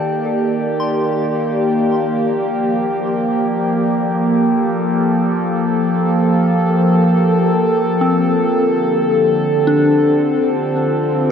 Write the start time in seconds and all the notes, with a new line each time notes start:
Already playing: D#3 A#3 G4 A4 D5 G5 A5
0.80 C6
1.90 F3 G5
3.49 A4
8.01 C4
8.57 D3
9.20 C4
9.67 D4
10.32 F4